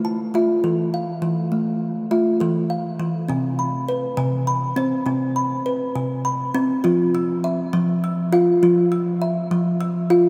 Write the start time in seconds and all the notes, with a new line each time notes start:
0.05 A5
0.34 A3 F4 E5
0.64 E3 A4
0.94 F5
1.22 E3
1.52 A3
2.11 A3 F4 E5
2.40 E3 A4
2.70 F5
3.00 E3
3.29 C3 C4
3.59 B5
3.89 B4
4.17 C3
4.47 B5
4.76 C4 C5
5.06 C3 C4
5.36 B5
5.66 B4
5.96 C3
6.25 B5
6.55 C4
6.84 F3 F4
7.15 E6
7.44 E5
7.73 F3
8.04 E6
8.33 F4 F5
8.63 F3 F4
8.92 E6
9.22 E5
9.51 F3
9.81 E6
10.10 F4 F5